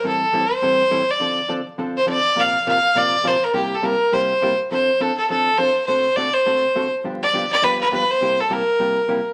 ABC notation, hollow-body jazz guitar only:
X:1
M:4/4
L:1/8
Q:"Swing" 1/4=206
K:F
V:1 name="Hollow-body jazz guitar"
[A,,E,G,CEA] z [A,,E,G,CEA] z [A,,E,G,CEA] z [A,,E,G,CEA] z | [D,F,CDA] z [D,F,CDA] z [D,F,CDA] z [D,F,CDA] z | [B,,C,F,B,FB] z [B,,C,F,B,FB] z [B,,C,F,B,FB] z [B,,C,F,B,FB] z | [C,G,B,EG] z [C,G,B,EG] z [C,G,B,EG] z [C,G,B,EG] z |
[F,CDA] z [F,CDA] z [F,CDA] z [F,CDA] z | [D,A,C^FA] z [D,A,CFA] z [D,A,CFA] z [D,A,CFA] z | [G,,D,F,=B,DG] z [G,,D,F,B,DG] z [G,,D,F,B,DG] z [G,,D,F,B,DG] z | [C,G,B,EG] z [C,G,B,EG] z [C,G,B,EG] z [C,G,B,EG] z |]